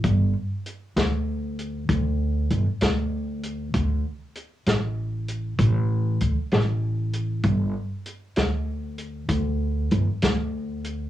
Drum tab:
HH |x-xx-xx-xx-x|x-xx-xx-xx-x|x-xx-xx-xx-x|
SD |---o-----o--|---o-----o--|---o-----o--|
BD |o-----o-----|o-----o-----|o-----o-----|